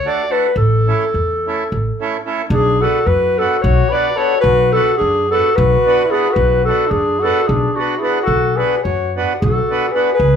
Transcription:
0.05 A3 D4 F#4 A4 D5
0.29 A3 D4 F#4 A4 B4
0.56 A1 A4
0.87 A3 C#4 E4 A4
1.14 E2
1.47 A3 C#4 E4 A4
1.72 A1
2.00 A3 C#4 E4 A4
2.25 A3 C#4 E4 A4
2.49 B1 D4 G#4
2.81 B3 D4 F#4 A4 B4
3.06 F#2 F#4 B4
3.38 B3 D4 F#4 A4 B4
3.62 B1 F#4 C#5
3.90 B3 D4 F#4 B4 D5
4.16 B3 D4 F#4 A4 B4 C#5
4.41 B1 F#4 B4
4.72 B3 D4 F#4 A4 B4
4.97 D4 G#4
5.01 F#2
5.28 B3 D4 F#4 A4
5.33 F#4 B4
5.55 B1 F#4 B4
5.86 B3 D4 F#4 B4
6.06 E4
6.11 B3 D4 F#4 G#4 B4
6.31 F#4 B4
6.36 B1
6.65 B3 D4 F#4 A4
6.69 B4
6.88 F#2 D4 G#4
7.20 B3 F#4 A4
7.24 D4 F#4 B4
7.47 B1 D4 G#4
7.73 D4 F#4
7.77 B3 D4 F#4 B4
7.98 B3 E4 G#4
8.02 D4 F#4 B4
8.22 F#4 A4
8.27 B1
8.56 B3 D4 F#4 G#4 B4
8.83 F#2 F#4 C#5
9.16 B3 D4 F#4 B4
9.40 B1 F#4 A4
9.70 B3 D4 F#4 B4
9.91 B3 D4 F#4 G#4 B4
9.95 B4
10.14 G#4 B4
10.20 C#2

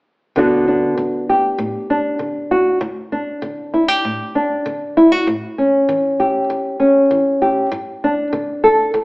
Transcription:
0.36 D2 D3 B3 D4 F#4
0.68 D4
0.98 D3
1.29 G4
1.58 A2
1.90 D4
2.19 D3
2.51 F#4
2.81 D2
3.12 D4
3.42 D3
3.74 E4
3.88 G4
4.05 A2
4.35 D4
4.66 D3
4.97 E4
5.12 F#4
5.27 A2
5.58 C#4
5.89 E3
6.20 G4
6.50 E2
6.80 C#4
7.11 E3
7.42 G4
7.72 G2
8.04 D4
8.33 D3
8.64 A4
8.94 D2

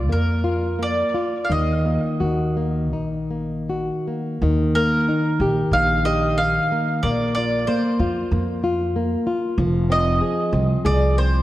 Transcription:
Already playing: D5
0.09 F2 A#3 A#4
0.44 F4
0.79 A#3 D5
1.14 F4
1.44 F5
1.49 D#2 D#3 D#5
1.85 A#3
2.20 D#2 F#4
2.57 A#3
2.92 A#1 D#4
3.31 A#3
3.70 F#4
4.08 A#3
4.42 D#2 D#3
4.75 A#3 A#4
5.09 D#4
5.40 A#1 G4
5.71 A#1 D#4 F5
6.05 G4 D#5
6.38 D#4 F5
6.72 A#3
7.03 A#1 A#3 D5
7.35 F4 D5
7.67 A#3 C5
7.99 F2 F4
8.31 F2 A#3
8.64 F4
8.96 A#3
9.27 F4
9.58 F1 F3
9.90 C4 D#5
10.21 G#4
10.52 C2 C4
10.85 C2 G#4 D5
11.18 C4 C5

